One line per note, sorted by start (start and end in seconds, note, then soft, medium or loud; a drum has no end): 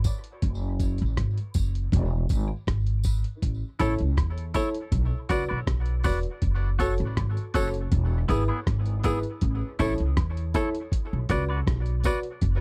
0.04 0.23 F#4 medium
0.04 0.24 B4 medium
0.04 0.24 D5 medium
0.04 kick medium
0.04 closed hi-hat medium
0.04 tambourine medium
0.24 closed hi-hat soft
0.42 0.97 F#1 medium
0.42 kick loud
0.42 closed hi-hat medium
0.80 0.98 F#4 medium
0.80 0.99 A4 medium
0.80 0.99 C#5 loud
0.80 kick medium
0.80 closed hi-hat medium
0.80 tambourine soft
0.98 1.18 A1 medium
0.98 closed hi-hat soft
1.17 1.36 G#1 medium
1.17 kick loud
1.17 cross-stick loud
1.17 closed hi-hat medium
1.17 high woodblock medium
1.38 closed hi-hat soft
1.54 1.91 F#1 medium
1.54 1.73 F#4 medium
1.54 1.73 A4 medium
1.54 1.74 C#5 loud
1.54 kick medium
1.54 closed hi-hat medium
1.54 tambourine medium
1.75 closed hi-hat medium
1.92 2.29 E1 loud
1.92 kick loud
1.92 closed hi-hat loud
2.29 2.49 G#1 medium
2.29 2.48 E4 medium
2.29 2.48 G#4 medium
2.29 2.49 B4 medium
2.29 kick loud
2.29 closed hi-hat medium
2.29 tambourine soft
2.48 high woodblock medium
2.67 3.22 G#1 medium
2.67 kick medium
2.67 cross-stick loud
2.67 closed hi-hat medium
2.86 closed hi-hat soft
3.04 3.23 E4 medium
3.04 3.23 G#4 medium
3.04 3.24 B4 medium
3.04 kick medium
3.04 closed hi-hat medium
3.04 tambourine medium
3.24 closed hi-hat soft
3.42 3.61 A1 medium
3.42 kick medium
3.42 closed hi-hat medium
3.79 3.99 A1 medium
3.79 3.93 E4 medium
3.79 3.98 E4 medium
3.79 3.98 A4 medium
3.79 3.94 A4 medium
3.79 3.99 C#5 loud
3.79 3.94 C#5 medium
3.79 kick medium
3.79 closed hi-hat medium
3.79 tambourine medium
3.99 4.17 C#2 medium
3.99 closed hi-hat soft
4.17 4.53 E2 medium
4.17 kick medium
4.17 cross-stick loud
4.17 closed hi-hat medium
4.17 high woodblock medium
4.38 closed hi-hat medium
4.54 4.68 E4 medium
4.54 4.73 E4 medium
4.54 4.73 A4 medium
4.54 4.69 A4 medium
4.54 4.69 C#5 medium
4.54 4.74 C#5 loud
4.54 kick medium
4.54 closed hi-hat medium
4.54 tambourine medium
4.74 closed hi-hat medium
4.92 5.11 B1 loud
4.92 kick loud
4.92 closed hi-hat loud
5.29 5.49 C#2 medium
5.29 5.43 F#4 medium
5.29 5.48 F#4 medium
5.29 5.44 B4 medium
5.29 5.48 B4 medium
5.29 5.49 D5 medium
5.29 5.44 D5 medium
5.29 kick medium
5.29 closed hi-hat medium
5.29 tambourine soft
5.49 5.67 B1 medium
5.49 5.60 F#4 soft
5.49 5.59 B4 soft
5.49 5.59 D5 medium
5.49 high woodblock medium
5.67 6.03 B1 medium
5.67 kick medium
5.67 cross-stick loud
5.67 closed hi-hat medium
5.86 closed hi-hat soft
6.04 6.24 E1 medium
6.04 6.18 F#4 medium
6.04 6.23 F#4 medium
6.04 6.23 B4 medium
6.04 6.18 B4 medium
6.04 6.19 D5 medium
6.04 6.24 D5 medium
6.04 kick medium
6.04 open hi-hat medium
6.04 tambourine medium
6.23 closed hi-hat soft
6.42 6.97 F#1 medium
6.42 kick loud
6.42 closed hi-hat medium
6.79 6.93 F#4 medium
6.79 6.98 F#4 medium
6.79 6.93 A4 medium
6.79 6.98 A4 medium
6.79 6.94 C#5 medium
6.79 6.99 C#5 medium
6.79 kick medium
6.79 closed hi-hat medium
6.79 tambourine soft
6.98 7.17 A1 medium
6.98 closed hi-hat soft
7.17 7.36 G#1 medium
7.17 kick medium
7.17 cross-stick medium
7.17 closed hi-hat medium
7.17 high woodblock medium
7.37 closed hi-hat soft
7.54 7.91 F#1 medium
7.54 7.73 F#4 medium
7.54 7.68 F#4 medium
7.54 7.73 A4 medium
7.54 7.68 A4 medium
7.54 7.73 C#5 loud
7.54 7.69 C#5 medium
7.54 kick medium
7.54 closed hi-hat medium
7.54 tambourine medium
7.74 closed hi-hat medium
7.92 8.28 E1 loud
7.92 kick loud
7.92 closed hi-hat loud
8.29 8.48 G#1 medium
8.29 8.43 B3 medium
8.29 8.43 E4 medium
8.29 8.48 E4 medium
8.29 8.48 G#4 medium
8.29 8.43 G#4 medium
8.29 8.49 B4 medium
8.29 kick medium
8.29 closed hi-hat medium
8.29 tambourine soft
8.48 8.59 B3 medium
8.48 8.59 E4 medium
8.48 8.59 G#4 medium
8.48 high woodblock medium
8.67 9.22 G#1 loud
8.67 kick medium
8.67 cross-stick medium
8.67 closed hi-hat medium
8.86 closed hi-hat soft
9.03 9.18 B3 medium
9.03 9.23 E4 medium
9.03 9.18 E4 loud
9.03 9.23 G#4 medium
9.03 9.19 G#4 medium
9.03 9.23 B4 medium
9.03 kick loud
9.03 closed hi-hat medium
9.03 tambourine medium
9.23 closed hi-hat soft
9.41 9.61 A1 medium
9.41 kick medium
9.41 closed hi-hat medium
9.79 9.98 A1 medium
9.79 9.93 E4 medium
9.79 9.98 E4 medium
9.79 9.93 A4 medium
9.79 9.98 A4 medium
9.79 9.93 C#5 medium
9.79 9.98 C#5 loud
9.79 kick medium
9.79 closed hi-hat medium
9.79 tambourine medium
9.98 10.17 C#2 medium
9.98 closed hi-hat medium
10.17 10.53 E2 medium
10.17 kick loud
10.17 cross-stick loud
10.17 closed hi-hat medium
10.17 high woodblock medium
10.37 closed hi-hat medium
10.54 10.73 E4 medium
10.54 10.68 E4 medium
10.54 10.73 A4 medium
10.54 10.69 A4 medium
10.54 10.73 C#5 medium
10.54 10.69 C#5 loud
10.54 kick medium
10.54 closed hi-hat medium
10.54 tambourine medium
10.75 closed hi-hat medium
10.92 kick loud
10.92 closed hi-hat loud
11.13 11.30 B1 medium
11.29 11.66 C#2 medium
11.29 11.48 F#4 medium
11.29 11.43 F#4 medium
11.29 11.48 B4 medium
11.29 11.44 B4 loud
11.29 11.48 D5 medium
11.29 11.44 D5 loud
11.29 kick medium
11.29 closed hi-hat medium
11.29 tambourine soft
11.49 11.60 F#4 medium
11.49 11.59 B4 soft
11.49 11.59 D5 medium
11.49 high woodblock medium
11.67 12.03 B1 medium
11.67 kick loud
11.67 cross-stick medium
11.67 closed hi-hat medium
11.86 closed hi-hat soft
12.04 12.23 F#4 medium
12.04 12.18 F#4 medium
12.04 12.23 B4 medium
12.04 12.19 B4 medium
12.04 12.24 D5 medium
12.04 12.19 D5 medium
12.04 kick medium
12.04 closed hi-hat medium
12.04 tambourine medium
12.23 closed hi-hat soft
12.41 12.61 F#1 medium
12.41 kick loud
12.41 closed hi-hat medium